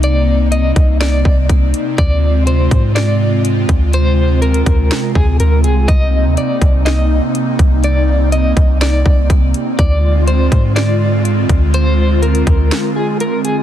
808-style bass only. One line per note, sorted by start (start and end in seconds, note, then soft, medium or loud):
0.00 0.72 C2 loud
0.76 1.23 C2 loud
1.25 1.49 C2 loud
1.49 1.73 C2 loud
1.98 2.68 D2 loud
2.71 3.65 G#2 loud
3.69 4.63 D2 loud
4.66 4.90 D2 loud
5.15 5.39 D2 loud
5.40 5.66 D2 loud
5.64 5.87 C2 loud
5.88 6.26 C2 loud
6.25 6.37 D#2 medium
6.62 7.20 C2 loud
7.59 8.53 C2 loud
8.57 9.04 C2 loud
9.06 9.29 C2 loud
9.30 9.53 C2 loud
9.79 10.49 D2 loud
10.52 11.45 G#2 loud
11.49 12.43 D2 loud
12.47 12.70 D2 loud